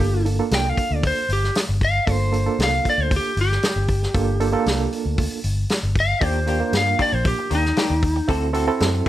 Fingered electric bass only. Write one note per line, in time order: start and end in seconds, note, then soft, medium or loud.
0.00 0.39 G1 medium
0.51 0.71 C2 loud
0.91 1.10 D2 loud
1.29 1.49 G1 loud
1.69 1.98 G1 medium
2.08 2.47 G1 loud
2.59 2.79 C2 loud
2.98 3.18 D2 loud
3.37 3.56 G1 loud
3.76 4.05 G1 medium
4.15 4.54 G1 loud
4.66 4.86 C2 loud
5.05 5.25 D2 loud
5.44 5.64 G1 medium
5.83 6.13 G1 medium
6.22 6.61 D#2 loud
6.73 6.93 G2 loud
7.13 7.33 A#1 medium
7.51 7.71 D#2 loud
7.90 8.20 D#2 medium
8.29 8.68 D2 loud
8.80 9.00 F#2 loud